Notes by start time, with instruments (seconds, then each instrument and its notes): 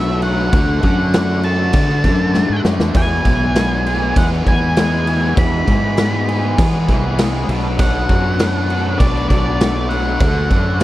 Already playing: fingered electric bass B1, distorted electric guitar F#3 A3 D4 F#4, lead electric guitar E5
0.08 overdriven electric guitar B2 F#3 B3 D4 F#4
0.22 overdriven electric guitar F#3 B3 D4 F#4, lead electric guitar F#5, crash
0.38 overdriven electric guitar B3 D4 F#4
0.53 fingered electric bass D2, overdriven electric guitar D3 A3 D4 F#4, kick, crash
0.83 fingered electric bass F#2, overdriven electric guitar D3 A3 D4 F#4, lead electric guitar F#5, kick, crash
0.99 overdriven electric guitar A3 D4 F#4
1.14 overdriven electric guitar D3 A3 D4 F#4, snare, crash
1.43 overdriven electric guitar D3 A3 D4 F#4, lead electric guitar A5, crash
1.59 overdriven electric guitar A3 D4 F#4
1.73 fingered electric bass D3, kick, crash
1.89 overdriven electric guitar A3 D4 F#4, snare
2.04 fingered electric bass F#2, overdriven electric guitar D3 A3 D4 F#4, kick, snare, crash
2.19 overdriven electric guitar A3 D4 F#4
2.34 distorted electric guitar A3, snare
2.49 fingered electric bass G#2, overdriven electric guitar D3 A3 D4 F#4
2.64 fingered electric bass F#2, overdriven electric guitar D3 A3 D4 F#4, snare
2.79 fingered electric bass E2, overdriven electric guitar A3 D4 F#4, snare
2.93 overdriven electric guitar E2 B2 E3 G#3 B3 G#4, fingered electric bass E2, lead electric guitar G#5, kick, crash
3.24 fingered electric bass B1, overdriven electric guitar E3 G#3 B3 G#4, kick, crash
3.40 overdriven electric guitar E3 G#3 B3 G#4
3.55 overdriven electric guitar E2 B2 E3 G#3 B3 G#4, snare, crash
3.84 overdriven electric guitar E3 G#3 B3 G#4, crash
4.00 overdriven electric guitar E3 G#3 B3 G#4
4.16 fingered electric bass E2, distorted electric guitar B3, lead electric guitar F#5, kick, crash
4.31 overdriven electric guitar E3 G#3 B3 G#4, snare
4.45 fingered electric bass E2, overdriven electric guitar E3 G#3 B3 G#4, lead electric guitar G#5, kick, crash
4.60 overdriven electric guitar E3 G#3 B3 G#4
4.77 distorted electric guitar G#3, snare, crash
4.91 overdriven electric guitar E2 B2 E3 G#3 B3 G#4
5.06 overdriven electric guitar E3 G#3 B3 G#4, crash
5.21 overdriven electric guitar E3 G#3 B3 G#4
5.36 overdriven electric guitar E2 B2 E3 G#3 B3 G#4, fingered electric bass E2, lead electric guitar B5, kick, crash
5.66 fingered electric bass G#2, overdriven electric guitar E3 G#3 B3 G#4, kick, crash
5.82 overdriven electric guitar E3 G#3 B3 G#4
5.97 overdriven electric guitar E2 B2 E3 G#3 B3 G#4, snare, crash
6.28 overdriven electric guitar E3 G#3 B3 G#4, crash
6.44 overdriven electric guitar E3 G#3 B3 G#4
6.57 fingered electric bass E3, distorted electric guitar B3, kick, crash
6.74 overdriven electric guitar E3 G#3 B3 G#4
6.88 fingered electric bass C2, overdriven electric guitar E3 G#3 B3 G#4, kick, snare, crash
7.04 overdriven electric guitar E3 G#3 B3 G#4
7.18 distorted electric guitar G#3, snare, crash
7.34 overdriven electric guitar E2 B2 E3 G#3 B3 G#4
7.49 fingered electric bass B1, overdriven electric guitar B2 F#3 B3 D4 F#4, crash
7.64 overdriven electric guitar B3 D4 F#4
7.79 overdriven electric guitar B2 F#3 B3 D4 F#4, lead electric guitar F#5, kick, crash
8.09 fingered electric bass F#2, overdriven electric guitar F#3 B3 D4 F#4, kick, crash
8.25 overdriven electric guitar B3 D4 F#4
8.39 overdriven electric guitar B2 F#3 B3 D4 F#4, snare, crash
8.69 overdriven electric guitar F#3 B3 D4 F#4, crash
8.84 overdriven electric guitar B3 D4 F#4
8.99 fingered electric bass B1, distorted electric guitar D4, lead electric guitar D5, kick, crash
9.14 overdriven electric guitar B3 D4 F#4, snare
9.29 fingered electric bass B1, overdriven electric guitar F#3 B3 D4 F#4, lead electric guitar D5, kick, snare, crash
9.44 overdriven electric guitar B3 D4 F#4
9.60 distorted electric guitar A3, snare, crash
9.75 overdriven electric guitar B2 F#3 B3 D4 F#4
9.89 overdriven electric guitar F#3 B3 D4 F#4, lead electric guitar F#5, crash
10.04 overdriven electric guitar B3 D4 F#4
10.19 fingered electric bass D2, overdriven electric guitar D3 A3 D4 F#4, kick, crash
10.49 fingered electric bass F#2, overdriven electric guitar D3 A3 D4 F#4, kick, crash
10.65 overdriven electric guitar A3 D4 F#4
10.80 overdriven electric guitar D3, crash